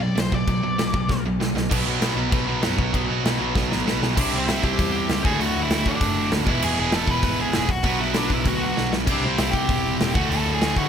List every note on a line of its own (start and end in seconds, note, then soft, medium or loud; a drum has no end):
0.00 0.12 B1 medium
0.00 0.14 B2 medium
0.00 0.15 F#3 medium
0.00 0.20 D5 loud
0.15 0.28 B1 medium
0.15 0.30 B2 medium
0.15 0.30 F#3 medium
0.15 snare loud
0.15 crash medium
0.20 0.34 C5 medium
0.32 0.44 B1 loud
0.32 0.46 B2 medium
0.32 0.46 F#3 medium
0.32 1.23 D5 loud
0.32 kick medium
0.48 0.59 B1 loud
0.48 0.62 B2 medium
0.48 0.62 F#3 medium
0.48 kick loud
0.48 crash medium
0.63 0.75 B1 medium
0.63 0.77 B2 medium
0.63 0.77 F#3 medium
0.78 0.90 B1 medium
0.78 0.92 B2 medium
0.78 0.92 F#3 medium
0.78 snare loud
0.78 crash medium
0.93 1.05 B1 medium
0.93 1.07 B2 medium
0.93 1.08 F#3 medium
0.93 kick medium
1.09 1.21 B1 loud
1.09 1.23 B2 medium
1.09 1.23 F#3 medium
1.09 kick loud
1.09 snare medium
1.23 1.35 B1 medium
1.23 1.39 B2 medium
1.23 1.39 F#3 medium
1.39 1.51 B1 medium
1.39 1.54 B2 medium
1.39 1.54 F#3 loud
1.39 snare medium
1.53 1.66 B1 loud
1.53 1.68 B2 medium
1.53 1.69 F#3 medium
1.53 snare medium
1.69 1.81 B1 medium
1.69 1.87 B2 loud
1.69 1.86 F#3 medium
1.69 1.85 B3 loud
1.69 kick loud
1.69 crash loud
1.69 crash medium
1.85 1.95 B1 loud
1.85 2.01 B2 medium
1.85 2.02 F#3 medium
1.85 2.02 B3 medium
2.01 2.11 B1 medium
2.01 2.17 B2 loud
2.01 2.16 F#3 loud
2.01 2.15 B3 loud
2.01 snare loud
2.01 crash medium
2.16 2.26 B1 medium
2.16 2.31 B2 medium
2.16 2.32 F#3 medium
2.16 2.32 B3 medium
2.32 2.42 B1 loud
2.32 2.47 B2 medium
2.32 2.46 F#3 medium
2.32 2.46 B3 loud
2.32 kick loud
2.32 crash medium
2.47 2.58 B1 medium
2.47 2.61 B2 medium
2.47 2.62 F#3 medium
2.47 2.63 B3 loud
2.62 2.73 F#2 medium
2.62 2.78 B2 loud
2.62 2.77 F#3 loud
2.62 2.77 B3 loud
2.62 snare loud
2.62 crash medium
2.78 2.88 B1 loud
2.78 2.92 B2 medium
2.78 2.93 F#3 medium
2.78 2.93 B3 loud
2.78 kick medium
2.93 3.03 B1 loud
2.93 3.10 B2 medium
2.93 3.09 F#3 loud
2.93 3.09 B3 loud
2.93 kick loud
2.93 crash medium
3.09 3.19 B1 loud
3.09 3.24 B2 medium
3.09 3.24 F#3 medium
3.09 3.25 B3 loud
3.25 3.34 B1 loud
3.25 3.39 B2 loud
3.25 3.38 F#3 loud
3.25 3.38 B3 loud
3.25 snare loud
3.25 crash medium
3.39 3.49 B1 loud
3.39 3.54 B2 medium
3.39 3.54 F#3 medium
3.39 3.55 B3 loud
3.55 3.65 B1 loud
3.55 3.71 B2 medium
3.55 3.70 F#3 loud
3.55 3.69 B3 loud
3.55 kick loud
3.55 snare medium
3.70 3.80 A1 medium
3.70 3.85 B2 medium
3.70 3.85 F#3 medium
3.70 3.86 B3 medium
3.70 snare medium
3.86 3.96 B1 medium
3.86 4.00 B2 medium
3.86 4.00 F#3 loud
3.86 3.99 B3 loud
3.86 snare loud
4.00 4.11 B1 loud
4.00 4.15 B2 medium
4.00 4.15 F#3 medium
4.00 4.15 B3 medium
4.00 snare medium
4.15 4.30 C2 loud
4.15 5.23 C3 medium
4.15 5.23 G3 medium
4.15 5.23 C4 medium
4.15 5.24 E4 loud
4.15 5.24 G4 loud
4.15 5.24 C5 loud
4.15 kick loud
4.15 crash loud
4.20 5.25 C4 loud
4.20 4.33 D4 medium
4.20 4.38 D5 loud
4.32 4.46 C2 medium
4.37 4.49 C4 medium
4.37 4.51 C5 medium
4.47 4.61 C3 loud
4.47 4.62 E4 medium
4.47 4.65 E5 loud
4.47 snare loud
4.47 open hi-hat medium
4.62 4.77 C2 medium
4.62 5.20 G4 medium
4.62 5.25 G5 loud
4.62 kick medium
4.79 5.05 E2 loud
4.79 kick loud
4.79 open hi-hat medium
5.08 5.22 C#2 medium
5.08 snare loud
5.08 open hi-hat medium
5.24 6.44 D2 medium
5.24 5.38 D2 loud
5.24 6.45 A2 loud
5.24 6.45 D3 loud
5.24 6.46 A3 loud
5.24 6.47 F#4 loud
5.24 5.40 G#4 medium
5.24 5.41 G#5 loud
5.24 kick loud
5.40 5.53 D2 loud
5.40 5.61 F#4 medium
5.40 5.63 F#5 medium
5.40 open hi-hat medium
5.56 5.69 D2 medium
5.62 5.84 E4 medium
5.62 5.87 E5 loud
5.70 5.83 D2 loud
5.70 snare loud
5.70 open hi-hat medium
5.85 5.99 D2 medium
5.85 6.29 D4 medium
5.85 6.30 D5 loud
5.85 kick medium
6.01 6.27 F#1 loud
6.01 kick loud
6.01 open hi-hat medium
6.30 6.44 D2 medium
6.30 snare loud
6.30 open hi-hat medium
6.44 6.60 E1 loud
6.44 7.67 E2 loud
6.44 7.68 B2 loud
6.44 7.68 E3 loud
6.44 7.68 G#3 loud
6.44 7.69 B3 loud
6.44 7.69 E4 loud
6.44 kick loud
6.49 6.63 E4 medium
6.49 6.64 E5 loud
6.62 6.75 E1 loud
6.62 6.77 G#4 medium
6.62 6.77 G#5 loud
6.62 crash loud
6.77 6.90 E1 loud
6.77 6.93 G#4 medium
6.77 6.93 G#5 loud
6.92 7.06 E2 medium
6.92 7.08 A4 medium
6.92 7.09 A5 medium
6.92 snare loud
6.92 open hi-hat medium
7.07 7.21 E1 medium
7.07 7.38 B5 loud
7.07 kick medium
7.11 7.38 B4 medium
7.23 7.49 G#1 loud
7.23 kick loud
7.23 open hi-hat medium
7.41 7.54 G#4 medium
7.41 7.56 G#5 medium
7.53 7.67 E1 loud
7.53 snare loud
7.53 open hi-hat medium
7.58 7.70 G#4 medium
7.58 7.70 G#5 medium
7.69 7.82 B1 loud
7.69 8.00 F#4 medium
7.69 7.99 F#5 loud
7.69 kick medium
7.83 7.97 B1 loud
7.83 9.05 B2 medium
7.83 9.06 F#3 medium
7.83 9.06 B3 medium
7.83 9.07 D4 medium
7.83 9.07 F#4 medium
7.83 9.07 B4 loud
7.83 kick loud
7.83 open hi-hat medium
7.99 8.13 B1 medium
7.99 8.15 E4 medium
7.99 8.15 E5 loud
8.14 8.28 B1 medium
8.14 8.30 D4 medium
8.14 8.30 D5 medium
8.14 snare loud
8.14 open hi-hat medium
8.30 8.43 B1 loud
8.30 8.47 E4 medium
8.30 kick medium
8.34 8.48 E5 medium
8.45 8.72 D2 medium
8.45 8.61 F#4 medium
8.45 8.62 F#5 loud
8.45 kick loud
8.45 open hi-hat medium
8.64 8.91 F#4 medium
8.64 8.92 F#5 medium
8.76 8.90 B1 medium
8.76 snare medium
8.92 9.05 B1 loud
8.92 snare loud
9.06 9.20 C2 loud
9.06 10.13 C3 medium
9.06 10.13 G3 medium
9.06 10.14 C4 loud
9.06 10.14 E4 medium
9.06 10.14 G4 loud
9.06 10.14 C5 loud
9.06 kick loud
9.06 crash loud
9.11 9.24 D4 medium
9.11 9.24 D5 medium
9.24 9.37 C2 loud
9.24 9.39 C4 medium
9.24 9.39 C5 medium
9.38 9.51 C2 loud
9.38 9.53 E4 medium
9.38 9.50 E5 loud
9.38 snare loud
9.38 open hi-hat medium
9.51 9.66 C2 medium
9.51 10.10 G4 medium
9.51 10.14 G5 loud
9.51 kick medium
9.69 9.95 E1 loud
9.69 kick loud
9.69 open hi-hat medium
10.00 10.12 E1 medium
10.00 snare loud
10.00 open hi-hat medium
10.14 10.89 D2 medium
10.14 10.28 D2 loud
10.14 10.89 A2 loud
10.14 10.89 D3 loud
10.14 10.89 A3 loud
10.14 10.30 F#4 medium
10.14 10.89 F#4 loud
10.14 10.30 F#5 loud
10.14 kick loud
10.29 10.43 D2 loud
10.29 10.51 A4 medium
10.29 10.53 A5 loud
10.29 open hi-hat medium
10.46 10.59 D2 loud
10.53 10.74 G#4 medium
10.53 10.77 G#5 loud
10.61 10.74 D2 loud
10.61 snare loud
10.61 open hi-hat medium
10.76 10.89 D2 medium
10.76 10.89 F#4 medium
10.76 10.89 F#5 medium
10.76 kick medium